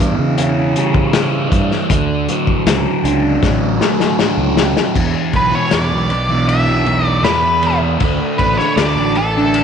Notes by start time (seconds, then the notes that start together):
Already playing: E2 G2 B2 E3
0.00 E4, closed hi-hat
0.18 C#3
0.38 E3, closed hi-hat
0.76 G3, closed hi-hat
0.94 kick
1.13 E4, snare, closed hi-hat
1.52 G2 E3, kick, closed hi-hat
1.71 snare
1.90 D2 D3, kick, closed hi-hat
2.29 F#3, closed hi-hat
2.47 kick
2.65 C#2 F#3, snare, closed hi-hat
3.04 C#2 D4, closed hi-hat
3.43 A1 F#3, kick, snare
3.81 A3, snare
4.00 snare
4.19 D4, snare
4.37 C#2
4.57 F#3, snare
4.77 snare
4.94 E2 B2 E3, kick, crash
5.33 B1 B4, kick, ride
5.51 E3 C#5
5.55 B2
5.71 E2 B2 E3 D5, snare, ride
5.90 B1 B2 E3
6.10 muted distorted electric guitar stroke, ride
6.29 B2 E3
6.49 E5, ride
6.66 B2 E3
6.85 E2 B2 E3, ride
7.07 D5
7.23 E2 B2 B4, snare, ride
7.27 E3
7.42 B2 E3
7.63 E2 B2 E3, ride
7.81 E3
7.85 B2
8.00 D2 D3 A3, kick, ride
8.04 D4
8.38 A1 B4, kick, ride
8.57 D4 C#5, snare
8.62 A3
8.76 D2 D3 A3 D5, snare, ride
8.81 D4
8.95 A1 D4
9.01 A3
9.15 A4, muted distorted electric guitar stroke, ride
9.37 A3 D4
9.54 ride